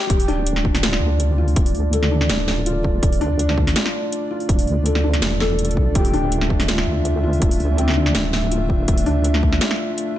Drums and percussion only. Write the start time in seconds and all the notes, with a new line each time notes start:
0.10 kick, closed hi-hat
0.20 open hi-hat
0.28 open hi-hat
0.47 closed hi-hat
0.56 snare
0.65 kick
0.75 snare, open hi-hat
0.83 snare, closed hi-hat
0.93 snare
1.20 closed hi-hat
1.48 open hi-hat
1.56 kick, closed hi-hat
1.66 open hi-hat
1.75 open hi-hat
1.93 closed hi-hat
2.03 snare
2.21 snare
2.30 snare, closed hi-hat
2.48 snare
2.66 closed hi-hat
2.84 kick
3.03 kick, closed hi-hat
3.12 open hi-hat
3.21 open hi-hat
3.39 closed hi-hat
3.49 snare
3.58 kick
3.67 snare, open hi-hat
3.76 snare, closed hi-hat
3.86 snare
4.12 closed hi-hat
4.40 open hi-hat
4.49 kick, closed hi-hat
4.59 open hi-hat
4.67 open hi-hat
4.86 closed hi-hat
4.95 snare
5.13 snare, closed hi-hat
5.22 snare, closed hi-hat
5.40 snare
5.59 closed hi-hat
5.65 closed hi-hat
5.71 closed hi-hat
5.77 kick
5.95 kick, closed hi-hat
6.05 open hi-hat
6.14 open hi-hat
6.32 closed hi-hat
6.41 snare
6.50 kick
6.60 snare, open hi-hat
6.68 snare, closed hi-hat
6.78 snare
7.05 closed hi-hat
7.33 open hi-hat
7.42 kick, closed hi-hat
7.51 open hi-hat
7.60 open hi-hat
7.78 closed hi-hat
7.88 snare
7.90 snare
7.94 snare
8.06 snare
8.15 snare, closed hi-hat
8.33 snare
8.51 closed hi-hat
8.70 kick
8.88 kick, closed hi-hat
8.98 open hi-hat
9.06 open hi-hat
9.24 closed hi-hat
9.34 snare
9.43 kick
9.52 snare
9.61 snare, closed hi-hat
9.71 snare
9.98 closed hi-hat